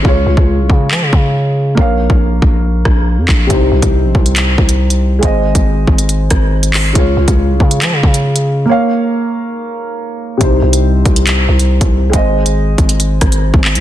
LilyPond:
<<
  \new Staff \with { instrumentName = "Grand piano" } { \time 4/4 \key c \phrygian \tempo 4 = 139 <des aes f' des''>1 | <bes bes' des'' f''>1 | <c g ees' c''>1 | <aes aes' c'' ees''>1 |
<des aes f' des''>1 | <bes bes' des'' f''>1 | <c g ees' c''>1 | <aes aes' c'' ees''>1 | }
  \new Staff \with { instrumentName = "808-style bass" } { \clef bass \time 4/4 \key c \phrygian des,8 des,16 des,8 c,16 des8 f16 des16 des4. | bes,,8. bes,,8. bes,,4 bes,,8. f,16 bes,,8 | c,8 c,16 c,8 bes,,16 c,4 c,4. | aes,,8. aes,,8. aes,,4 aes,,4. |
des,8 des,16 des,8 c,16 des8 f16 des16 des4. | r1 | c,8 c,4 c,4 c,8. c,8. | aes,,4. aes,,4 aes,,8. aes,,8 ees,16 | }
  \new DrumStaff \with { instrumentName = "Drums" } \drummode { \time 4/4 bd8. bd16 r8 bd8 hc8 bd8 r4 | bd8. bd16 r8 bd8 r8 <bd ss>8 r8 <hc bd>8 | <hh bd>8. <hh bd>16 r8 bd16 hh16 <hc hh>8 bd16 hh16 r16 hh8. | <hh bd>8. <hh bd>16 r8 bd16 hh16 hh8 <hh bd ss>8 r16 hh16 <hc hho>8 |
<hh bd>8. <hh bd>16 r8 bd16 hh16 <hc hh>8 bd16 hh16 r16 hh8. | r4 r4 r4 r4 | <hh bd>8. hh16 r8 <hh bd>16 hh16 <hc hh>8. hh16 r16 <hh bd>8. | <hh bd>8. hh16 r8 <hh bd>16 hh16 hh8 <hh bd ss>16 hh16 r16 bd16 hc16 hh16 | }
>>